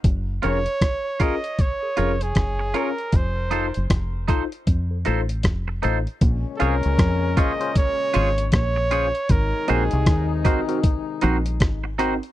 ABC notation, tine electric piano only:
X:1
M:4/4
L:1/16
Q:"Swing 16ths" 1/4=78
K:Bbm
V:1 name="Tine electric piano"
z2 [DFAB] z3 [DFAB] z2 [AB] [DFAB] z3 [DFAB] z | z2 [EF=Ac] z3 [EFAc] z2 [Ac] [EFAc] z3 [EFAc] z | z2 [DFAc] z3 [DFAc] [DFAc] z2 [DFAc] z3 [DFAc] z | z2 [CEGB] z3 [CEGB] [CEGB] z2 [CEGB] z3 [CEGB] z |]